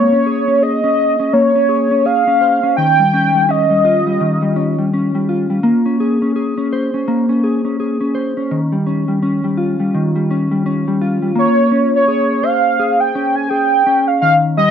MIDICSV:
0, 0, Header, 1, 3, 480
1, 0, Start_track
1, 0, Tempo, 715990
1, 1852, Time_signature, 4, 2, 24, 8
1, 9860, End_track
2, 0, Start_track
2, 0, Title_t, "Soft synth lead"
2, 0, Program_c, 0, 80
2, 0, Note_on_c, 0, 73, 89
2, 422, Note_on_c, 0, 75, 90
2, 432, Note_off_c, 0, 73, 0
2, 893, Note_on_c, 0, 73, 88
2, 903, Note_off_c, 0, 75, 0
2, 1379, Note_on_c, 0, 77, 101
2, 1389, Note_off_c, 0, 73, 0
2, 1851, Note_off_c, 0, 77, 0
2, 1855, Note_on_c, 0, 79, 113
2, 2349, Note_on_c, 0, 75, 96
2, 2360, Note_off_c, 0, 79, 0
2, 3542, Note_off_c, 0, 75, 0
2, 7633, Note_on_c, 0, 73, 95
2, 7983, Note_off_c, 0, 73, 0
2, 8016, Note_on_c, 0, 73, 93
2, 8335, Note_on_c, 0, 77, 101
2, 8345, Note_off_c, 0, 73, 0
2, 8716, Note_on_c, 0, 79, 93
2, 8726, Note_off_c, 0, 77, 0
2, 8953, Note_on_c, 0, 80, 95
2, 8963, Note_off_c, 0, 79, 0
2, 9045, Note_on_c, 0, 79, 110
2, 9055, Note_off_c, 0, 80, 0
2, 9436, Note_on_c, 0, 77, 93
2, 9446, Note_off_c, 0, 79, 0
2, 9525, Note_off_c, 0, 77, 0
2, 9529, Note_on_c, 0, 77, 103
2, 9623, Note_off_c, 0, 77, 0
2, 9770, Note_on_c, 0, 75, 97
2, 9860, Note_off_c, 0, 75, 0
2, 9860, End_track
3, 0, Start_track
3, 0, Title_t, "Clean electric guitar"
3, 0, Program_c, 1, 27
3, 0, Note_on_c, 1, 56, 66
3, 0, Note_on_c, 1, 58, 73
3, 0, Note_on_c, 1, 60, 63
3, 0, Note_on_c, 1, 68, 66
3, 79, Note_off_c, 1, 56, 0
3, 82, Note_on_c, 1, 61, 54
3, 102, Note_off_c, 1, 60, 0
3, 176, Note_off_c, 1, 68, 0
3, 176, Note_on_c, 1, 68, 54
3, 317, Note_off_c, 1, 61, 0
3, 320, Note_on_c, 1, 61, 53
3, 409, Note_off_c, 1, 68, 0
3, 417, Note_on_c, 1, 68, 51
3, 559, Note_off_c, 1, 61, 0
3, 562, Note_on_c, 1, 61, 55
3, 798, Note_off_c, 1, 61, 0
3, 801, Note_on_c, 1, 61, 54
3, 890, Note_off_c, 1, 58, 0
3, 893, Note_on_c, 1, 58, 70
3, 1039, Note_off_c, 1, 61, 0
3, 1041, Note_on_c, 1, 61, 52
3, 1124, Note_off_c, 1, 68, 0
3, 1132, Note_on_c, 1, 68, 54
3, 1278, Note_off_c, 1, 61, 0
3, 1281, Note_on_c, 1, 61, 52
3, 1369, Note_off_c, 1, 68, 0
3, 1377, Note_on_c, 1, 68, 57
3, 1521, Note_off_c, 1, 61, 0
3, 1524, Note_on_c, 1, 61, 53
3, 1616, Note_on_c, 1, 72, 58
3, 1762, Note_off_c, 1, 61, 0
3, 1765, Note_on_c, 1, 61, 53
3, 1860, Note_on_c, 1, 51, 74
3, 1912, Note_off_c, 1, 68, 0
3, 1912, Note_off_c, 1, 72, 0
3, 2001, Note_off_c, 1, 58, 0
3, 2004, Note_on_c, 1, 55, 56
3, 2024, Note_off_c, 1, 61, 0
3, 2102, Note_on_c, 1, 61, 54
3, 2236, Note_off_c, 1, 55, 0
3, 2244, Note_on_c, 1, 55, 54
3, 2335, Note_off_c, 1, 61, 0
3, 2337, Note_on_c, 1, 61, 57
3, 2473, Note_off_c, 1, 55, 0
3, 2481, Note_on_c, 1, 55, 53
3, 2579, Note_on_c, 1, 65, 63
3, 2716, Note_off_c, 1, 55, 0
3, 2724, Note_on_c, 1, 55, 54
3, 2812, Note_off_c, 1, 51, 0
3, 2820, Note_on_c, 1, 51, 68
3, 2955, Note_off_c, 1, 55, 0
3, 2963, Note_on_c, 1, 55, 56
3, 3055, Note_off_c, 1, 61, 0
3, 3058, Note_on_c, 1, 61, 52
3, 3200, Note_off_c, 1, 55, 0
3, 3208, Note_on_c, 1, 55, 56
3, 3306, Note_off_c, 1, 61, 0
3, 3308, Note_on_c, 1, 61, 56
3, 3443, Note_off_c, 1, 55, 0
3, 3450, Note_on_c, 1, 55, 56
3, 3543, Note_off_c, 1, 65, 0
3, 3546, Note_on_c, 1, 65, 58
3, 3679, Note_off_c, 1, 55, 0
3, 3687, Note_on_c, 1, 55, 54
3, 3774, Note_off_c, 1, 55, 0
3, 3776, Note_on_c, 1, 58, 77
3, 3835, Note_off_c, 1, 51, 0
3, 3923, Note_off_c, 1, 61, 0
3, 3926, Note_on_c, 1, 61, 53
3, 4021, Note_off_c, 1, 65, 0
3, 4024, Note_on_c, 1, 68, 55
3, 4166, Note_off_c, 1, 61, 0
3, 4169, Note_on_c, 1, 61, 55
3, 4254, Note_off_c, 1, 68, 0
3, 4262, Note_on_c, 1, 68, 53
3, 4405, Note_off_c, 1, 61, 0
3, 4408, Note_on_c, 1, 61, 54
3, 4509, Note_on_c, 1, 72, 62
3, 4649, Note_off_c, 1, 61, 0
3, 4652, Note_on_c, 1, 61, 52
3, 4742, Note_off_c, 1, 58, 0
3, 4745, Note_on_c, 1, 58, 73
3, 4886, Note_off_c, 1, 61, 0
3, 4888, Note_on_c, 1, 61, 56
3, 4977, Note_off_c, 1, 68, 0
3, 4985, Note_on_c, 1, 68, 54
3, 5124, Note_off_c, 1, 61, 0
3, 5127, Note_on_c, 1, 61, 51
3, 5220, Note_off_c, 1, 68, 0
3, 5228, Note_on_c, 1, 68, 55
3, 5364, Note_off_c, 1, 61, 0
3, 5367, Note_on_c, 1, 61, 56
3, 5454, Note_off_c, 1, 72, 0
3, 5462, Note_on_c, 1, 72, 59
3, 5609, Note_off_c, 1, 61, 0
3, 5611, Note_on_c, 1, 61, 50
3, 5706, Note_on_c, 1, 51, 73
3, 5757, Note_off_c, 1, 72, 0
3, 5760, Note_off_c, 1, 68, 0
3, 5845, Note_off_c, 1, 58, 0
3, 5848, Note_on_c, 1, 55, 51
3, 5868, Note_off_c, 1, 61, 0
3, 5943, Note_on_c, 1, 61, 51
3, 6079, Note_off_c, 1, 55, 0
3, 6087, Note_on_c, 1, 55, 54
3, 6182, Note_off_c, 1, 61, 0
3, 6184, Note_on_c, 1, 61, 55
3, 6321, Note_off_c, 1, 55, 0
3, 6329, Note_on_c, 1, 55, 51
3, 6418, Note_on_c, 1, 65, 60
3, 6560, Note_off_c, 1, 55, 0
3, 6568, Note_on_c, 1, 55, 54
3, 6659, Note_off_c, 1, 51, 0
3, 6667, Note_on_c, 1, 51, 71
3, 6800, Note_off_c, 1, 55, 0
3, 6808, Note_on_c, 1, 55, 53
3, 6906, Note_off_c, 1, 61, 0
3, 6909, Note_on_c, 1, 61, 49
3, 7040, Note_off_c, 1, 55, 0
3, 7048, Note_on_c, 1, 55, 51
3, 7143, Note_off_c, 1, 61, 0
3, 7146, Note_on_c, 1, 61, 55
3, 7285, Note_off_c, 1, 55, 0
3, 7292, Note_on_c, 1, 55, 57
3, 7381, Note_off_c, 1, 65, 0
3, 7384, Note_on_c, 1, 65, 59
3, 7516, Note_off_c, 1, 55, 0
3, 7524, Note_on_c, 1, 55, 47
3, 7610, Note_off_c, 1, 55, 0
3, 7612, Note_on_c, 1, 58, 76
3, 7680, Note_off_c, 1, 51, 0
3, 7852, Note_off_c, 1, 61, 0
3, 7854, Note_on_c, 1, 61, 57
3, 8095, Note_off_c, 1, 65, 0
3, 8098, Note_on_c, 1, 68, 54
3, 8335, Note_on_c, 1, 72, 64
3, 8570, Note_off_c, 1, 68, 0
3, 8578, Note_on_c, 1, 68, 59
3, 8815, Note_off_c, 1, 61, 0
3, 8817, Note_on_c, 1, 61, 57
3, 9046, Note_off_c, 1, 68, 0
3, 9054, Note_on_c, 1, 68, 58
3, 9292, Note_off_c, 1, 61, 0
3, 9295, Note_on_c, 1, 61, 58
3, 9533, Note_on_c, 1, 51, 76
3, 9594, Note_off_c, 1, 68, 0
3, 9594, Note_off_c, 1, 72, 0
3, 9767, Note_off_c, 1, 58, 0
3, 9770, Note_on_c, 1, 55, 59
3, 9790, Note_off_c, 1, 61, 0
3, 9860, Note_off_c, 1, 51, 0
3, 9860, Note_off_c, 1, 55, 0
3, 9860, End_track
0, 0, End_of_file